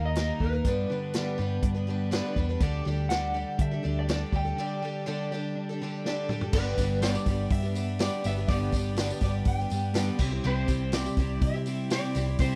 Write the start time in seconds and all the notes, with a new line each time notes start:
Already playing: D#2 D#3 G3 A#3 D#4 A#4
0.05 D#5
0.15 D#3 G3 A#3 D#4 A#4, snare, closed hi-hat
0.40 D#2 G3 A#3 D#4 B4, kick
0.45 A#4
0.53 A#3 D#4 A#4
0.65 G2 D3 G3 B3 D4 B4, kick, closed hi-hat
0.90 D3 G3 B3 D4 B4
1.14 G2 D3 G3 B3 D4 B4, snare, closed hi-hat
1.38 G2 G3 B3 D4 B4
1.62 G2 D4, kick, closed hi-hat
1.75 G3 B3 D4 B4
1.87 G3 B3 D4 B4
2.11 G2 D3 G3 B3 D4 B4, snare, closed hi-hat
2.36 E2 G3 B3 D4 B4, kick
2.49 G3 B3 D4 B4
2.60 D2 D3 G3 D4 G4 A4, kick, closed hi-hat
2.85 D2 G3 D4 G4 A4, snare
3.09 D3 G3 D4 G4 A4 F#5, snare, closed hi-hat
3.34 G3 D4 G4 A4
3.58 D3 D4 E5, kick, closed hi-hat
3.71 D4 G4 A4
3.83 D2 D3 G3 D4 G4 A4
3.99 D5
4.08 D3 G3 D4 G4 A4, snare, closed hi-hat
4.32 D2 G3 D4 G4 A4 G5, kick
4.45 D4 G4 A4
4.58 D3 G3 D4 G4 A4
4.82 G3 D4 G4 A4
5.06 D3 G3 D4 G4 A4
5.32 G3 D4 G4 A4
5.55 D4
5.69 D4 G4 A4
5.81 D3 G3 D4 G4 A4
6.06 D3 G3 D4 G4 A4, snare
6.29 G3 D4 G4, mid tom
6.33 A4
6.41 D4 G4 A4, floor tom
6.53 G1 G2 D3 G3 B3 D4 G4 B4, kick, crash, tambourine
6.77 G1 G3 B3 D4 G4, kick, open hi-hat, tambourine
6.81 G4
7.02 G2 D3 G3 B3 D4 G4 D5, snare, open hi-hat, tambourine
7.14 G3 B3 D4 G4, tambourine
7.25 G1 G3 B3 G4, kick, open hi-hat
7.30 D4 G4
7.50 G2 E5, kick, open hi-hat
7.62 G3 B3 D4 G4
7.75 G3 B3 D4 G4, open hi-hat, tambourine
7.99 G2 D3 G3 B3 D4 G4 D5, snare, open hi-hat, tambourine
8.23 G1 G3 G4 E5, open hi-hat, tambourine
8.27 B3 D4 G4
8.37 G3 B3 D4 G4
8.48 G1 G2 D3 G3 B3 D4 G4 D5, kick, open hi-hat, tambourine
8.72 G1 G3 B3 D4 G4, kick, open hi-hat, tambourine
8.96 G2 D3 G3 B3 D4 G4, snare, open hi-hat, tambourine
9.10 G3 B3 D4 G4, tambourine
9.20 G1 G3 G4 D5, kick, open hi-hat
9.24 B3 D4 G4
9.45 G1 G5, kick, open hi-hat
9.60 G3 B3 D4 G4
9.70 G2 G3 B3 D4, open hi-hat, tambourine
9.74 G4
9.94 G2 D3 G3 B3 D4 G4, snare, open hi-hat, tambourine
10.19 C2 C3 G3 C4 E4 G4, kick, tambourine, crash
10.31 C4 E4 G4
10.44 C2 C3 G3 C4 E4 G4 C5, tambourine
10.68 C2 G3 C4 E4 G4, kick, open hi-hat, tambourine
10.92 C3 G3 C4 E4 G4 D5, snare, open hi-hat, tambourine
11.05 C4 E4 G4, tambourine
11.17 C2 G3 C4 E4 G4, kick, open hi-hat
11.42 C3 E5, kick, open hi-hat
11.54 C4 E4 G4
11.66 G3 C4 E4 G4, open hi-hat, tambourine
11.90 C3 G3 C4 E4 G4 D5, snare, open hi-hat, tambourine
12.15 C2 G3 C4 E4 G4, snare, open hi-hat, tambourine
12.26 C4 E4 G4
12.39 C2 C3 G3 C4 E4 G4 C5, kick, open hi-hat, tambourine